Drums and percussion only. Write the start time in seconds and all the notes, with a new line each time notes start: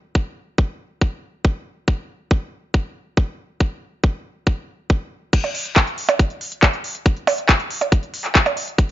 0.15 kick
0.58 kick
1.01 kick
1.45 kick
1.88 kick
2.31 kick
2.74 kick
3.17 kick
3.60 kick
4.04 kick
4.47 kick
4.90 kick
5.33 kick, closed hi-hat, crash
5.44 closed hi-hat, percussion blips
5.55 open hi-hat
5.65 closed hi-hat
5.76 kick, clap, closed hi-hat
5.87 closed hi-hat
5.98 open hi-hat
6.09 closed hi-hat, percussion blips
6.19 kick, closed hi-hat
6.30 closed hi-hat
6.41 open hi-hat
6.52 closed hi-hat
6.63 kick, clap, closed hi-hat, percussion blips
6.73 closed hi-hat
6.84 open hi-hat
6.95 closed hi-hat
7.06 kick, closed hi-hat
7.17 closed hi-hat
7.27 open hi-hat, percussion blips
7.38 closed hi-hat
7.49 kick, clap, closed hi-hat
7.60 closed hi-hat
7.71 open hi-hat
7.81 closed hi-hat, percussion blips
7.92 kick, closed hi-hat
8.03 closed hi-hat
8.14 open hi-hat
8.24 clap, closed hi-hat
8.35 kick, clap, closed hi-hat
8.46 closed hi-hat, percussion blips
8.57 open hi-hat
8.68 closed hi-hat
8.78 kick, closed hi-hat